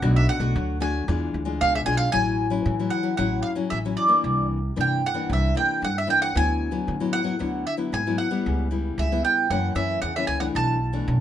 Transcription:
Already playing: F#5
0.02 B1 B2 A3 D4 F#4
0.16 E5
0.29 F#5
0.40 B1 A3 D4 F#4
0.56 D2 F#3
0.80 A3 D4 F#4 G#5
1.08 E2 E3 G#3 D4 F4
1.34 D2
1.45 G#3 D4 F4
1.61 C#2 B2 F5
1.75 E5
1.86 B1 G#3 D4 F4 G#5
1.97 F5
2.12 A1 A2 F#3 C#4 E4 G#5
2.50 F#3 C#4 E4
2.65 A2 E3
2.79 F#3 C#4 E4
2.90 F#5
3.03 F#3 C#4 E4
3.17 A1 A2 F#3 C#4 E4 F#5
3.43 F5
3.55 F#3 C#4 E4
3.70 A1 E3 E5
3.85 F#3 C#4 E4
3.97 D5
4.08 E3 A#3 D4
4.24 C2 C3
4.76 G2 C3 E3 A#3 D4
4.81 G5
5.06 F#5
5.14 E3 A#3 D4
5.30 C2 C3 E5
5.55 E3 A#3 D4 G5
5.82 G2 F#5
5.98 E5
6.07 E3 A#3 D4 G5
6.22 F#5
6.35 D2 D3 F#3 B3 E4 G#5
6.71 F#3 B3 E4
6.87 A2 D3
7.00 F#3 B3 E4
7.13 F#5
7.24 F#3 B3 E4
7.39 D2 D3 F#3 B3 E4
7.67 E5
7.77 F#3 B3 E4
7.92 G#2 A2 G#5
8.07 F#3 B3 E4
8.18 F#5
8.31 G3 B3 E4
8.46 C#2 C#3
8.71 G3 B3 E4
8.98 C#2 C#3 E5
9.12 G3 B3 E4
9.25 G5
9.50 F#2 E3 A#3 C#4 F#5
9.75 F#2 E3 A#3 C#4 E5
10.02 E2 C#3 F#5
10.16 E3 A#3 C#4 E5
10.27 C#2 G#5
10.40 E3 A3 D4 F#5
10.55 B1 B2 A5
10.93 E3 A3 D4
11.08 F#2 B2

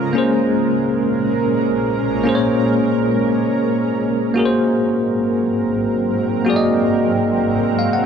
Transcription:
Already playing: C#3 G#3 C#4 F4 A4 A#4
0.13 A#2 A#3 C#4 G#4 A#4
0.18 C5
2.23 A#3 C#4 G#4
2.29 C5
2.35 C#5
4.34 G#2 F#3 A#3 C4 F#4 G#4 A#4
4.39 A#4
4.45 C5
6.45 A#3 F#4 G#4
6.50 D5
6.56 D#5
7.79 F5
7.93 F#5

